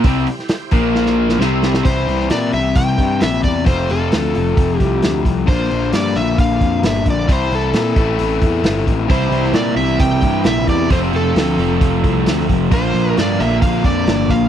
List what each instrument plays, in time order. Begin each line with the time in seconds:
0.04 picked electric bass C2, overdriven electric guitar C3 G3 C4, tonewheel organ E4 G4 C5 G5, kick, open hi-hat
0.27 open hi-hat
0.39 snare
0.49 snare, open hi-hat
0.71 picked electric bass A#1, overdriven electric guitar A#2 F3 A#3, tonewheel organ F4 A#4 F5, kick, open hi-hat
0.95 snare
1.06 snare
1.29 snare
1.39 picked electric bass C2, overdriven electric guitar C3 G3 C4, tonewheel organ C4 E4 G4 E5, snare
1.63 snare
1.74 snare
1.84 picked electric bass C2, overdriven electric guitar C3 E3 G3 C4 E4, electric slide guitar C5, kick, open hi-hat
2.08 picked electric bass C2, open hi-hat
2.20 snare
2.30 picked electric bass A#2, electric slide guitar D5, snare, open hi-hat
2.52 picked electric bass C2, electric slide guitar E5, open hi-hat
2.75 picked electric bass C2, electric slide guitar G5, kick, open hi-hat
2.98 picked electric bass G2, kick, open hi-hat
3.21 picked electric bass A#1, electric slide guitar E5, snare, open hi-hat
3.44 picked electric bass E2, electric slide guitar D5, kick, open hi-hat
3.65 picked electric bass F1, overdriven electric guitar F2 C3 F3 A3 C4 F4, electric slide guitar C5, kick, open hi-hat
3.89 picked electric bass F1, electric slide guitar A4, open hi-hat
4.12 picked electric bass D2, snare, open hi-hat
4.35 picked electric bass F1, open hi-hat
4.57 picked electric bass F1, kick, open hi-hat
4.79 picked electric bass C2, electric slide guitar G4, kick, open hi-hat
5.02 picked electric bass D2, snare, open hi-hat
5.25 picked electric bass C2, kick, open hi-hat
5.46 picked electric bass A#1, overdriven electric guitar A#2 D3 A#3 D4 F4, electric slide guitar C5, kick, open hi-hat
5.71 picked electric bass A#1, open hi-hat
5.93 picked electric bass G2, electric slide guitar D5, snare, open hi-hat
6.16 picked electric bass A#1, electric slide guitar E5, open hi-hat
6.38 picked electric bass A#1, electric slide guitar F5, kick, open hi-hat
6.61 picked electric bass F2, kick, open hi-hat
6.83 picked electric bass G1, electric slide guitar E5, snare, open hi-hat
6.96 snare
7.06 picked electric bass A#1, kick, open hi-hat
7.10 electric slide guitar D5
7.28 picked electric bass C2, overdriven electric guitar C3 E3 G3 C4 E4, kick, open hi-hat
7.32 electric slide guitar C5
7.51 picked electric bass C2, electric slide guitar A4, open hi-hat
7.74 picked electric bass A#2, snare, open hi-hat
7.96 picked electric bass A1, overdriven electric guitar A2 E3 A3 C4 E4, kick, open hi-hat
8.19 picked electric bass A1, open hi-hat
8.41 picked electric bass E2, kick, open hi-hat
8.64 picked electric bass G1, snare, open hi-hat
8.87 picked electric bass A1, kick, open hi-hat
9.08 picked electric bass C2, overdriven electric guitar C3 E3 G3 C4 E4, electric slide guitar C5, kick, open hi-hat
9.31 picked electric bass C2, open hi-hat
9.44 snare
9.53 picked electric bass A#2, electric slide guitar D5, snare, open hi-hat
9.75 picked electric bass C2, distorted electric guitar C3 E3 G3 C4 E4, electric slide guitar E5, open hi-hat
9.99 picked electric bass C2, electric slide guitar G5, kick, open hi-hat
10.21 picked electric bass G2, kick, open hi-hat
10.44 picked electric bass A#1, electric slide guitar E5, snare, open hi-hat
10.67 picked electric bass E2, electric slide guitar D5, kick, open hi-hat
10.90 picked electric bass F1, overdriven electric guitar F2 C3 F3 A3 C4 F4, electric slide guitar C5, kick, open hi-hat
11.12 picked electric bass F1, electric slide guitar A4, open hi-hat
11.35 picked electric bass D2, snare, open hi-hat
11.58 picked electric bass F1, distorted electric guitar F3 A3 C4 F4, open hi-hat
11.81 picked electric bass F1, kick, open hi-hat
12.04 picked electric bass C2, kick, open hi-hat
12.26 picked electric bass D2, snare, open hi-hat
12.40 snare
12.49 picked electric bass F1, kick, open hi-hat
12.71 picked electric bass A#1, overdriven electric guitar A#2 D3 A#3 D4 F4, distorted electric guitar F3, electric slide guitar C5, kick, open hi-hat
12.94 picked electric bass A#1, open hi-hat
13.17 picked electric bass G2, electric slide guitar D5, snare, open hi-hat
13.38 picked electric bass A#1, distorted electric guitar A#2 F3 A#3 D4 F4, electric slide guitar E5, open hi-hat
13.62 picked electric bass A#1, electric slide guitar F5, kick, open hi-hat
13.84 picked electric bass F2, electric slide guitar D5, kick, open hi-hat
14.07 picked electric bass G1, snare, open hi-hat
14.29 picked electric bass A#1, electric slide guitar F5, kick, open hi-hat